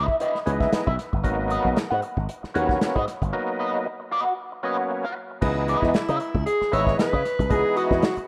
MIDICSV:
0, 0, Header, 1, 8, 480
1, 0, Start_track
1, 0, Tempo, 521739
1, 1147, Time_signature, 4, 2, 24, 8
1, 7613, End_track
2, 0, Start_track
2, 0, Title_t, "Clean electric guitar"
2, 0, Program_c, 0, 27
2, 0, Note_on_c, 0, 64, 101
2, 136, Note_off_c, 0, 64, 0
2, 186, Note_on_c, 0, 64, 74
2, 193, Note_on_c, 0, 71, 83
2, 198, Note_on_c, 0, 75, 91
2, 344, Note_off_c, 0, 64, 0
2, 348, Note_off_c, 0, 71, 0
2, 350, Note_off_c, 0, 75, 0
2, 555, Note_on_c, 0, 76, 63
2, 560, Note_on_c, 0, 71, 54
2, 565, Note_on_c, 0, 64, 54
2, 653, Note_off_c, 0, 64, 0
2, 657, Note_off_c, 0, 71, 0
2, 659, Note_off_c, 0, 76, 0
2, 799, Note_on_c, 0, 76, 77
2, 802, Note_on_c, 0, 71, 78
2, 807, Note_on_c, 0, 64, 60
2, 890, Note_off_c, 0, 64, 0
2, 895, Note_off_c, 0, 71, 0
2, 906, Note_off_c, 0, 76, 0
2, 1382, Note_on_c, 0, 66, 85
2, 1390, Note_on_c, 0, 71, 86
2, 1394, Note_on_c, 0, 75, 89
2, 1543, Note_off_c, 0, 66, 0
2, 1547, Note_off_c, 0, 71, 0
2, 1548, Note_off_c, 0, 75, 0
2, 1752, Note_on_c, 0, 78, 81
2, 1760, Note_on_c, 0, 71, 62
2, 1764, Note_on_c, 0, 66, 67
2, 1849, Note_off_c, 0, 66, 0
2, 1852, Note_off_c, 0, 71, 0
2, 1865, Note_off_c, 0, 78, 0
2, 2343, Note_on_c, 0, 66, 78
2, 2349, Note_on_c, 0, 71, 85
2, 2355, Note_on_c, 0, 78, 81
2, 2473, Note_off_c, 0, 78, 0
2, 2474, Note_off_c, 0, 71, 0
2, 2503, Note_off_c, 0, 66, 0
2, 2717, Note_on_c, 0, 75, 84
2, 2722, Note_on_c, 0, 71, 76
2, 2728, Note_on_c, 0, 66, 68
2, 2813, Note_off_c, 0, 66, 0
2, 2817, Note_off_c, 0, 71, 0
2, 2820, Note_off_c, 0, 75, 0
2, 3303, Note_on_c, 0, 66, 72
2, 3307, Note_on_c, 0, 71, 86
2, 3314, Note_on_c, 0, 75, 84
2, 3463, Note_off_c, 0, 66, 0
2, 3465, Note_off_c, 0, 71, 0
2, 3469, Note_off_c, 0, 75, 0
2, 3785, Note_on_c, 0, 66, 88
2, 3788, Note_on_c, 0, 71, 82
2, 3793, Note_on_c, 0, 75, 105
2, 3910, Note_off_c, 0, 75, 0
2, 3918, Note_off_c, 0, 71, 0
2, 3977, Note_off_c, 0, 66, 0
2, 4268, Note_on_c, 0, 66, 67
2, 4273, Note_on_c, 0, 71, 89
2, 4280, Note_on_c, 0, 75, 84
2, 4396, Note_off_c, 0, 75, 0
2, 4402, Note_off_c, 0, 71, 0
2, 4426, Note_off_c, 0, 66, 0
2, 4642, Note_on_c, 0, 78, 84
2, 4650, Note_on_c, 0, 71, 80
2, 4654, Note_on_c, 0, 66, 60
2, 4739, Note_off_c, 0, 66, 0
2, 4743, Note_off_c, 0, 71, 0
2, 4755, Note_off_c, 0, 78, 0
2, 5228, Note_on_c, 0, 64, 82
2, 5236, Note_on_c, 0, 71, 85
2, 5238, Note_on_c, 0, 75, 92
2, 5418, Note_off_c, 0, 64, 0
2, 5422, Note_off_c, 0, 71, 0
2, 5423, Note_off_c, 0, 75, 0
2, 5599, Note_on_c, 0, 76, 79
2, 5608, Note_on_c, 0, 71, 78
2, 5612, Note_on_c, 0, 64, 72
2, 5695, Note_off_c, 0, 64, 0
2, 5699, Note_off_c, 0, 71, 0
2, 5711, Note_off_c, 0, 76, 0
2, 6181, Note_on_c, 0, 64, 72
2, 6188, Note_on_c, 0, 71, 93
2, 6194, Note_on_c, 0, 76, 91
2, 6317, Note_off_c, 0, 76, 0
2, 6319, Note_off_c, 0, 71, 0
2, 6341, Note_off_c, 0, 64, 0
2, 6560, Note_on_c, 0, 75, 64
2, 6564, Note_on_c, 0, 71, 69
2, 6570, Note_on_c, 0, 64, 70
2, 6655, Note_off_c, 0, 64, 0
2, 6659, Note_off_c, 0, 71, 0
2, 6660, Note_off_c, 0, 75, 0
2, 7140, Note_on_c, 0, 64, 83
2, 7147, Note_on_c, 0, 71, 82
2, 7152, Note_on_c, 0, 75, 77
2, 7300, Note_off_c, 0, 64, 0
2, 7303, Note_off_c, 0, 71, 0
2, 7305, Note_off_c, 0, 75, 0
2, 7613, End_track
3, 0, Start_track
3, 0, Title_t, "Alto saxophone"
3, 0, Program_c, 1, 65
3, 5473, Note_on_c, 1, 64, 87
3, 5916, Note_off_c, 1, 64, 0
3, 5940, Note_on_c, 1, 68, 106
3, 6194, Note_on_c, 1, 73, 96
3, 6208, Note_off_c, 1, 68, 0
3, 6426, Note_off_c, 1, 73, 0
3, 6431, Note_on_c, 1, 71, 92
3, 6911, Note_on_c, 1, 68, 103
3, 6925, Note_off_c, 1, 71, 0
3, 7144, Note_on_c, 1, 66, 98
3, 7158, Note_off_c, 1, 68, 0
3, 7613, Note_off_c, 1, 66, 0
3, 7613, End_track
4, 0, Start_track
4, 0, Title_t, "Tonewheel organ"
4, 0, Program_c, 2, 16
4, 421, Note_on_c, 2, 52, 80
4, 421, Note_on_c, 2, 56, 72
4, 424, Note_on_c, 2, 59, 83
4, 426, Note_on_c, 2, 61, 69
4, 483, Note_on_c, 2, 63, 86
4, 491, Note_off_c, 2, 61, 0
4, 809, Note_off_c, 2, 52, 0
4, 809, Note_off_c, 2, 56, 0
4, 811, Note_off_c, 2, 59, 0
4, 840, Note_off_c, 2, 63, 0
4, 1138, Note_on_c, 2, 54, 79
4, 1138, Note_on_c, 2, 58, 76
4, 1141, Note_on_c, 2, 59, 80
4, 1144, Note_on_c, 2, 63, 97
4, 1641, Note_off_c, 2, 54, 0
4, 1641, Note_off_c, 2, 58, 0
4, 1643, Note_off_c, 2, 59, 0
4, 1644, Note_off_c, 2, 63, 0
4, 2340, Note_on_c, 2, 54, 90
4, 2340, Note_on_c, 2, 58, 77
4, 2342, Note_on_c, 2, 59, 75
4, 2345, Note_on_c, 2, 61, 94
4, 2729, Note_off_c, 2, 54, 0
4, 2729, Note_off_c, 2, 58, 0
4, 2730, Note_off_c, 2, 59, 0
4, 2732, Note_off_c, 2, 61, 0
4, 3061, Note_on_c, 2, 54, 80
4, 3063, Note_on_c, 2, 58, 77
4, 3066, Note_on_c, 2, 59, 85
4, 3066, Note_on_c, 2, 63, 99
4, 3563, Note_off_c, 2, 54, 0
4, 3563, Note_off_c, 2, 58, 0
4, 3565, Note_off_c, 2, 59, 0
4, 3565, Note_off_c, 2, 63, 0
4, 4259, Note_on_c, 2, 54, 84
4, 4261, Note_on_c, 2, 58, 74
4, 4263, Note_on_c, 2, 59, 80
4, 4266, Note_on_c, 2, 61, 80
4, 4648, Note_off_c, 2, 54, 0
4, 4649, Note_off_c, 2, 58, 0
4, 4650, Note_off_c, 2, 59, 0
4, 4652, Note_off_c, 2, 61, 0
4, 4980, Note_on_c, 2, 52, 96
4, 4982, Note_on_c, 2, 56, 83
4, 4984, Note_on_c, 2, 59, 87
4, 4985, Note_on_c, 2, 63, 98
4, 5481, Note_off_c, 2, 52, 0
4, 5482, Note_off_c, 2, 56, 0
4, 5483, Note_off_c, 2, 59, 0
4, 5483, Note_off_c, 2, 63, 0
4, 6178, Note_on_c, 2, 52, 72
4, 6181, Note_on_c, 2, 56, 68
4, 6183, Note_on_c, 2, 59, 66
4, 6185, Note_on_c, 2, 63, 82
4, 6567, Note_off_c, 2, 52, 0
4, 6568, Note_off_c, 2, 56, 0
4, 6569, Note_off_c, 2, 59, 0
4, 6570, Note_off_c, 2, 63, 0
4, 6897, Note_on_c, 2, 52, 81
4, 6898, Note_on_c, 2, 56, 73
4, 6900, Note_on_c, 2, 59, 75
4, 6903, Note_on_c, 2, 63, 90
4, 7398, Note_off_c, 2, 52, 0
4, 7398, Note_off_c, 2, 56, 0
4, 7400, Note_off_c, 2, 59, 0
4, 7401, Note_off_c, 2, 63, 0
4, 7613, End_track
5, 0, Start_track
5, 0, Title_t, "Slap bass"
5, 0, Program_c, 3, 36
5, 429, Note_on_c, 3, 37, 84
5, 617, Note_off_c, 3, 37, 0
5, 804, Note_on_c, 3, 35, 85
5, 886, Note_off_c, 3, 35, 0
5, 1043, Note_on_c, 3, 31, 86
5, 1148, Note_off_c, 3, 31, 0
5, 1148, Note_on_c, 3, 32, 99
5, 1443, Note_off_c, 3, 32, 0
5, 1516, Note_on_c, 3, 35, 86
5, 1602, Note_off_c, 3, 35, 0
5, 1762, Note_on_c, 3, 44, 92
5, 1845, Note_off_c, 3, 44, 0
5, 1998, Note_on_c, 3, 32, 89
5, 2083, Note_off_c, 3, 32, 0
5, 2350, Note_on_c, 3, 39, 74
5, 2538, Note_off_c, 3, 39, 0
5, 2723, Note_on_c, 3, 44, 87
5, 2806, Note_off_c, 3, 44, 0
5, 2961, Note_on_c, 3, 31, 70
5, 3045, Note_off_c, 3, 31, 0
5, 4987, Note_on_c, 3, 37, 101
5, 5282, Note_off_c, 3, 37, 0
5, 5360, Note_on_c, 3, 40, 87
5, 5444, Note_off_c, 3, 40, 0
5, 5602, Note_on_c, 3, 49, 103
5, 5685, Note_off_c, 3, 49, 0
5, 5841, Note_on_c, 3, 37, 89
5, 5924, Note_off_c, 3, 37, 0
5, 6189, Note_on_c, 3, 32, 77
5, 6376, Note_off_c, 3, 32, 0
5, 6563, Note_on_c, 3, 49, 101
5, 6644, Note_off_c, 3, 49, 0
5, 6803, Note_on_c, 3, 36, 76
5, 6884, Note_off_c, 3, 36, 0
5, 6907, Note_on_c, 3, 37, 107
5, 7012, Note_off_c, 3, 37, 0
5, 7276, Note_on_c, 3, 40, 96
5, 7360, Note_off_c, 3, 40, 0
5, 7613, End_track
6, 0, Start_track
6, 0, Title_t, "Muted clean electric guitar strokes"
6, 81, Note_on_c, 9, 29, 42
6, 173, Note_off_c, 9, 29, 0
6, 426, Note_on_c, 9, 29, 36
6, 518, Note_off_c, 9, 29, 0
6, 664, Note_on_c, 9, 29, 42
6, 756, Note_off_c, 9, 29, 0
6, 901, Note_on_c, 9, 29, 40
6, 993, Note_off_c, 9, 29, 0
6, 1037, Note_on_c, 9, 29, 49
6, 1129, Note_off_c, 9, 29, 0
6, 1621, Note_on_c, 9, 29, 35
6, 1713, Note_off_c, 9, 29, 0
6, 1860, Note_on_c, 9, 29, 41
6, 1952, Note_off_c, 9, 29, 0
6, 1999, Note_on_c, 9, 29, 36
6, 2091, Note_off_c, 9, 29, 0
6, 2108, Note_on_c, 9, 29, 46
6, 2200, Note_off_c, 9, 29, 0
6, 2237, Note_on_c, 9, 29, 38
6, 2329, Note_off_c, 9, 29, 0
6, 2476, Note_on_c, 9, 29, 41
6, 2568, Note_off_c, 9, 29, 0
6, 2586, Note_on_c, 9, 29, 37
6, 2678, Note_off_c, 9, 29, 0
6, 2824, Note_on_c, 9, 29, 44
6, 2916, Note_off_c, 9, 29, 0
6, 2964, Note_on_c, 9, 29, 58
6, 3056, Note_off_c, 9, 29, 0
6, 3543, Note_on_c, 9, 29, 45
6, 3635, Note_off_c, 9, 29, 0
6, 3678, Note_on_c, 9, 29, 52
6, 3770, Note_off_c, 9, 29, 0
6, 3921, Note_on_c, 9, 29, 40
6, 4013, Note_off_c, 9, 29, 0
6, 4160, Note_on_c, 9, 29, 48
6, 4252, Note_off_c, 9, 29, 0
6, 4408, Note_on_c, 9, 29, 37
6, 4500, Note_off_c, 9, 29, 0
6, 4515, Note_on_c, 9, 29, 43
6, 4607, Note_off_c, 9, 29, 0
6, 4751, Note_on_c, 9, 29, 45
6, 4843, Note_off_c, 9, 29, 0
6, 4884, Note_on_c, 9, 29, 39
6, 4976, Note_off_c, 9, 29, 0
6, 5468, Note_on_c, 9, 29, 47
6, 5560, Note_off_c, 9, 29, 0
6, 5706, Note_on_c, 9, 29, 43
6, 5798, Note_off_c, 9, 29, 0
6, 5842, Note_on_c, 9, 29, 47
6, 5934, Note_off_c, 9, 29, 0
6, 5945, Note_on_c, 9, 29, 44
6, 6037, Note_off_c, 9, 29, 0
6, 6082, Note_on_c, 9, 29, 54
6, 6174, Note_off_c, 9, 29, 0
6, 6321, Note_on_c, 9, 29, 36
6, 6413, Note_off_c, 9, 29, 0
6, 6424, Note_on_c, 9, 29, 43
6, 6516, Note_off_c, 9, 29, 0
6, 6666, Note_on_c, 9, 29, 45
6, 6758, Note_off_c, 9, 29, 0
6, 6800, Note_on_c, 9, 29, 48
6, 6892, Note_off_c, 9, 29, 0
6, 7383, Note_on_c, 9, 29, 48
6, 7475, Note_off_c, 9, 29, 0
6, 7520, Note_on_c, 9, 29, 40
6, 7612, Note_off_c, 9, 29, 0
6, 7613, End_track
7, 0, Start_track
7, 0, Title_t, "Muted slap bass strokes"
7, 668, Note_on_c, 9, 29, 49
7, 760, Note_off_c, 9, 29, 0
7, 2243, Note_on_c, 9, 29, 46
7, 2335, Note_off_c, 9, 29, 0
7, 5469, Note_on_c, 9, 29, 44
7, 5561, Note_off_c, 9, 29, 0
7, 6085, Note_on_c, 9, 29, 49
7, 6177, Note_off_c, 9, 29, 0
7, 7518, Note_on_c, 9, 29, 46
7, 7610, Note_off_c, 9, 29, 0
7, 7613, End_track
8, 0, Start_track
8, 0, Title_t, "Drums"
8, 76, Note_on_c, 9, 36, 81
8, 168, Note_off_c, 9, 36, 0
8, 185, Note_on_c, 9, 42, 84
8, 277, Note_off_c, 9, 42, 0
8, 323, Note_on_c, 9, 38, 34
8, 415, Note_off_c, 9, 38, 0
8, 430, Note_on_c, 9, 42, 78
8, 522, Note_off_c, 9, 42, 0
8, 557, Note_on_c, 9, 36, 101
8, 565, Note_on_c, 9, 38, 39
8, 649, Note_off_c, 9, 36, 0
8, 657, Note_off_c, 9, 38, 0
8, 667, Note_on_c, 9, 42, 90
8, 668, Note_on_c, 9, 38, 100
8, 759, Note_off_c, 9, 42, 0
8, 760, Note_off_c, 9, 38, 0
8, 802, Note_on_c, 9, 36, 94
8, 894, Note_off_c, 9, 36, 0
8, 909, Note_on_c, 9, 38, 34
8, 911, Note_on_c, 9, 42, 83
8, 1001, Note_off_c, 9, 38, 0
8, 1003, Note_off_c, 9, 42, 0
8, 1041, Note_on_c, 9, 36, 87
8, 1133, Note_off_c, 9, 36, 0
8, 1145, Note_on_c, 9, 36, 93
8, 1145, Note_on_c, 9, 42, 80
8, 1237, Note_off_c, 9, 36, 0
8, 1237, Note_off_c, 9, 42, 0
8, 1382, Note_on_c, 9, 42, 62
8, 1474, Note_off_c, 9, 42, 0
8, 1517, Note_on_c, 9, 36, 73
8, 1609, Note_off_c, 9, 36, 0
8, 1623, Note_on_c, 9, 42, 68
8, 1629, Note_on_c, 9, 38, 104
8, 1715, Note_off_c, 9, 42, 0
8, 1721, Note_off_c, 9, 38, 0
8, 1861, Note_on_c, 9, 42, 64
8, 1953, Note_off_c, 9, 42, 0
8, 1997, Note_on_c, 9, 36, 78
8, 2089, Note_off_c, 9, 36, 0
8, 2106, Note_on_c, 9, 42, 84
8, 2198, Note_off_c, 9, 42, 0
8, 2245, Note_on_c, 9, 38, 34
8, 2337, Note_off_c, 9, 38, 0
8, 2349, Note_on_c, 9, 42, 74
8, 2441, Note_off_c, 9, 42, 0
8, 2476, Note_on_c, 9, 36, 99
8, 2484, Note_on_c, 9, 38, 37
8, 2568, Note_off_c, 9, 36, 0
8, 2576, Note_off_c, 9, 38, 0
8, 2588, Note_on_c, 9, 42, 90
8, 2590, Note_on_c, 9, 38, 103
8, 2680, Note_off_c, 9, 42, 0
8, 2682, Note_off_c, 9, 38, 0
8, 2722, Note_on_c, 9, 36, 85
8, 2814, Note_off_c, 9, 36, 0
8, 2831, Note_on_c, 9, 38, 32
8, 2832, Note_on_c, 9, 42, 95
8, 2923, Note_off_c, 9, 38, 0
8, 2924, Note_off_c, 9, 42, 0
8, 2961, Note_on_c, 9, 36, 86
8, 2968, Note_on_c, 9, 42, 50
8, 3053, Note_off_c, 9, 36, 0
8, 3060, Note_off_c, 9, 42, 0
8, 4986, Note_on_c, 9, 36, 98
8, 4986, Note_on_c, 9, 49, 92
8, 5078, Note_off_c, 9, 36, 0
8, 5078, Note_off_c, 9, 49, 0
8, 5228, Note_on_c, 9, 42, 61
8, 5320, Note_off_c, 9, 42, 0
8, 5358, Note_on_c, 9, 36, 76
8, 5366, Note_on_c, 9, 38, 36
8, 5450, Note_off_c, 9, 36, 0
8, 5458, Note_off_c, 9, 38, 0
8, 5466, Note_on_c, 9, 42, 79
8, 5472, Note_on_c, 9, 38, 107
8, 5558, Note_off_c, 9, 42, 0
8, 5564, Note_off_c, 9, 38, 0
8, 5597, Note_on_c, 9, 42, 47
8, 5689, Note_off_c, 9, 42, 0
8, 5704, Note_on_c, 9, 42, 71
8, 5796, Note_off_c, 9, 42, 0
8, 5839, Note_on_c, 9, 36, 93
8, 5931, Note_off_c, 9, 36, 0
8, 5949, Note_on_c, 9, 42, 89
8, 6041, Note_off_c, 9, 42, 0
8, 6087, Note_on_c, 9, 38, 38
8, 6179, Note_off_c, 9, 38, 0
8, 6194, Note_on_c, 9, 42, 82
8, 6286, Note_off_c, 9, 42, 0
8, 6319, Note_on_c, 9, 36, 100
8, 6328, Note_on_c, 9, 38, 36
8, 6411, Note_off_c, 9, 36, 0
8, 6420, Note_off_c, 9, 38, 0
8, 6433, Note_on_c, 9, 42, 85
8, 6434, Note_on_c, 9, 38, 108
8, 6525, Note_off_c, 9, 42, 0
8, 6526, Note_off_c, 9, 38, 0
8, 6563, Note_on_c, 9, 36, 84
8, 6655, Note_off_c, 9, 36, 0
8, 6673, Note_on_c, 9, 38, 34
8, 6674, Note_on_c, 9, 42, 81
8, 6765, Note_off_c, 9, 38, 0
8, 6766, Note_off_c, 9, 42, 0
8, 6802, Note_on_c, 9, 36, 93
8, 6810, Note_on_c, 9, 42, 46
8, 6894, Note_off_c, 9, 36, 0
8, 6902, Note_off_c, 9, 42, 0
8, 6904, Note_on_c, 9, 42, 87
8, 6906, Note_on_c, 9, 36, 106
8, 6996, Note_off_c, 9, 42, 0
8, 6998, Note_off_c, 9, 36, 0
8, 7144, Note_on_c, 9, 42, 60
8, 7236, Note_off_c, 9, 42, 0
8, 7276, Note_on_c, 9, 36, 90
8, 7283, Note_on_c, 9, 38, 34
8, 7368, Note_off_c, 9, 36, 0
8, 7375, Note_off_c, 9, 38, 0
8, 7382, Note_on_c, 9, 42, 69
8, 7388, Note_on_c, 9, 38, 120
8, 7474, Note_off_c, 9, 42, 0
8, 7480, Note_off_c, 9, 38, 0
8, 7512, Note_on_c, 9, 42, 51
8, 7604, Note_off_c, 9, 42, 0
8, 7613, End_track
0, 0, End_of_file